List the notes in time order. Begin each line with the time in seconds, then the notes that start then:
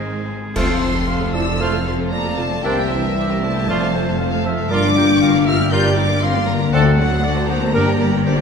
Already playing: G#1 G#2 D#3 G#3 C4 D#4 G#4 C5 G#5
0.28 G#3
0.55 F1 F2 A3 C4 F4 A4 C5 C6, concert bass drum, crash
0.69 C3 A3 F4 A4
0.82 A3 C4 F4 A4 C5
0.95 A3 C4 F4 A4
1.07 C4 F4 A4 C5 F5
1.21 A3 F4 A4
1.34 C4 E4 F4 A4 C5 D5 E6
1.47 A3 F4 A4 F5
1.60 A3 C4 F4 A4 C5 F6
1.73 A3 F4 A4
1.86 C4 F4 A4 C5 C6
1.99 A3 F4 A4
2.12 C3 A#3 C4 F4 A4 C5 D5 A#5
2.25 A3 F4 A4
2.38 C3 A3 C4 F4 A4 C5 A5
2.51 A3 F4 A4
2.64 C2 C3 G3 A#3 C4 D4 E4 C5 E5 G5
2.78 G3 A#3 C4 G4 A#4
2.90 E3 A#3 C4 D4 E4 C5 E5
3.03 A#3 C4 D4 G4 A#4
3.16 C4 D4 E4 G4 C5
3.29 A#3 C4 G4 A#4
3.43 A3 C4 D4 E4 C5 D5 A5
3.56 A#3 C4 G4 A#4 G5
3.69 F1 F2 A3 C4 F4 C5 D5
3.82 C3 A3 C4 A4 F5
3.94 A3 C4 F4 C5
4.07 A3 C4 F4 A4 F5
4.19 C4 F4 A4 C5 F5
4.33 A3 C4 F4 A4 F5
4.46 C4 F4 C5 E5 F5
4.59 A3 C4 A4 F5 A5
4.70 G1 G2 G3 A#3 D4 F4 A#4 D5 D6
4.83 D3 A#3 D4 G4 D5
4.96 G3 A#3 F4 A#4 G5
5.09 A#3 D4 F4 G4 D5
5.21 G3 F4 G4 A#4 F5
5.34 A#3 D4 G4 A#4 D5
5.47 G3 F4 A#4 E5 F5 F6
5.59 A#3 D4 G4 D5 G5
5.72 G3 A#3 F4 G4 A#4 D5 F5 G6
5.85 A#3 D4 G4 D5
5.97 G3 D4 F4 A#4 D6
6.10 A#3 D4 G4 D5
6.22 D3 G3 C4 F4 A#4 F5 C6
6.35 A#3 D4 G4 D5
6.47 D3 G3 A#3 F4 A#4 A#5
6.59 A#3 D4 G4 D5
6.72 D2 D3 A3 C4 D4 F#4 A4 D5 F#5 A5
6.85 A3 C4 F#4 A4 C5
6.98 F#3 A3 C4 D4 F#4 D5 F#5
7.10 C4 D4 F#4 A4 C5
7.23 A3 D4 F#4 A4 D5
7.36 C4 F#4 A4 C5
7.48 A3 A#3 D4 F#4 C5 D5 A#5
7.61 C4 F#4 A4 C5 A5
7.73 G1 G2 G3 A#3 D4 G4 A#4 D5
7.86 D3 A#3 G4 A#4 G5
7.98 G3 A#3 D4 G4 D5
8.11 A#3 D4 G4 A#4 G5
8.23 G3 D4 G4 A#4 C5 D5
8.37 A#3 D4 G4 A#4 G5